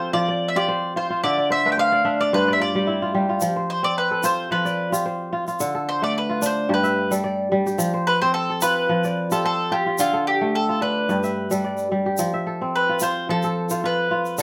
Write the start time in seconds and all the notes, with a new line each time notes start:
Already playing: F3 C4 F4 G4 A4 C5
0.13 F3 F4 D5
0.28 D5
0.48 E5
0.56 F4 G4 D5
0.68 C5
0.96 F4 C5
1.10 F4
1.24 D3 D5 E5
1.38 D5
1.50 C5 E5
1.65 A3 B4
1.72 G5
1.77 C5 F5
1.92 D5
2.05 D4 E5
2.20 D5 F5
2.33 G2 B4 C5
2.48 D5
2.53 E5
2.60 F4 D5
2.75 G3 G4
2.87 E4
3.02 F4
3.14 G3 G4
3.29 F4
3.41 F3, shaker
3.56 C5
3.70 C5
3.83 C4 D5
3.98 B4
4.11 A4
4.23 F4 C5, shaker
4.51 F3 F4 B4
4.65 D5, shaker
4.92 F4 G4, shaker
5.06 C5
5.33 F4
5.48 F4, shaker
5.60 D3, shaker
5.75 A4
5.89 C5
6.02 A3 D5
6.18 B4
6.29 F4
6.42 D4, shaker
6.46 C5
6.69 G2 G4
6.74 B4
6.83 E5, shaker
7.11 G3 A4, shaker
7.24 D5
7.52 G3
7.66 G4, shaker
7.78 F3, shaker
7.94 C5
8.07 B4
8.22 C4 C5
8.34 A4
8.50 A4
8.61 F4 B4, shaker
8.89 F3
9.04 D5, shaker
9.31 F4 G4 A4, shaker
9.44 A4 C5
9.72 F4 G4
9.86 F4
9.98 D3 F4, shaker
10.13 A4
10.27 G4
10.41 A3
10.55 A4
10.69 F4
10.81 D4 B4
11.09 G2 G4, shaker
11.24 E5, shaker
11.51 G3 A4, shaker
11.64 D5
11.78 shaker
11.91 G3
12.06 G4
12.18 F3, shaker
12.34 E5
12.47 A4
12.61 C4
12.76 B4
12.89 F4
13.00 F4 C5, shaker
13.29 F3 A4 C5
13.42 A4, shaker
13.70 F4 C5, shaker
13.84 F4 B4
14.11 F4
14.25 shaker
14.38 D3, shaker